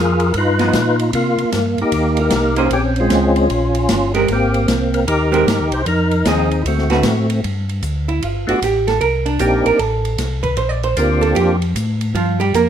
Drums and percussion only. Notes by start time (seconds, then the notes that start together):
0.20 ride
0.34 kick, ride
0.59 snare, ride
0.73 kick, snare, hi-hat pedal, ride
0.99 ride
1.13 kick, ride
1.38 ride
1.52 kick, snare, hi-hat pedal, ride
1.78 ride
1.92 kick, ride
2.17 ride
2.30 kick, snare, hi-hat pedal, ride
2.56 ride
2.71 kick, ride
2.96 ride
3.10 kick, snare, hi-hat pedal, ride
3.36 ride
3.50 kick, ride
3.75 ride
3.89 kick, snare, hi-hat pedal, ride
4.14 ride
4.28 kick, ride
4.54 ride
4.68 kick, snare, hi-hat pedal, ride
4.94 ride
5.07 kick, ride
5.34 ride
5.47 kick, snare, hi-hat pedal, ride
5.72 ride
5.86 kick, ride
6.11 ride
6.25 kick, snare, hi-hat pedal, ride
6.51 ride
6.65 kick, ride
6.78 snare
6.90 snare, ride
7.03 kick, snare, hi-hat pedal, ride
7.30 ride
7.44 kick, ride
7.69 ride
7.83 kick, hi-hat pedal, ride
8.09 ride
8.22 kick, ride
8.49 ride
8.62 kick, hi-hat pedal, ride
8.88 snare, ride
9.01 kick, ride
9.26 ride
9.39 kick, hi-hat pedal, ride
9.66 ride
9.79 kick, ride
10.05 ride
10.18 kick, snare, hi-hat pedal, ride
10.43 kick, ride
10.57 kick, ride
10.83 ride
10.97 kick, hi-hat pedal, ride
11.22 ride
11.36 kick, ride
11.62 ride
11.75 kick, hi-hat pedal, ride
12.01 ride
12.15 kick, ride
12.41 ride
12.54 kick, hi-hat pedal, ride